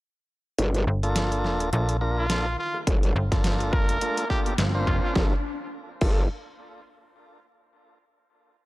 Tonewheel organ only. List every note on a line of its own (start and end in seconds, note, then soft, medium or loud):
1.03 1.70 A#3 medium
1.03 1.70 D4 medium
1.03 1.70 F4 medium
1.03 1.70 A4 loud
1.73 1.97 A#3 medium
1.73 1.97 D4 medium
1.73 1.97 F4 medium
1.73 1.97 A4 medium
2.01 2.27 A#3 medium
2.01 2.27 D4 medium
2.01 2.27 F4 medium
2.01 2.27 A#4 medium
2.30 2.46 A#3 medium
2.30 2.46 D4 medium
2.30 2.46 F4 medium
2.30 2.46 A4 medium
3.32 3.99 A#3 medium
3.32 3.98 D4 medium
3.32 3.98 F4 medium
3.32 3.98 A4 loud
4.01 4.25 A#3 medium
4.01 4.25 D4 medium
4.01 4.25 F4 medium
4.01 4.25 A4 medium
4.30 4.54 A#3 medium
4.30 4.54 D4 medium
4.30 4.54 F4 medium
4.30 4.54 A4 loud
4.75 5.14 A#3 loud
4.75 5.14 D4 medium
4.75 5.14 F4 medium
4.75 5.14 C5 loud
5.16 5.33 A#3 medium
5.16 5.33 D4 medium
5.16 5.33 F4 medium
5.16 5.33 A4 medium
6.01 6.23 A#3 medium
6.01 6.23 D4 medium
6.01 6.23 F4 medium
6.01 6.23 A4 medium